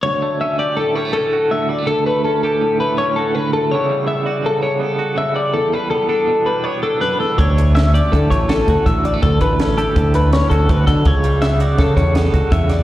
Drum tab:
HH |----------|----------|----------|----------|
SD |----------|----------|----------|----------|
BD |----------|----------|----------|----------|

HH |xxxxxxxxxx|xxxxxxxxxx|xxxxxxxxxx|
SD |--o---o---|--o---o---|--o-o-o--o|
BD |o---oo-oo-|oo--o--ooo|o---oo-oo-|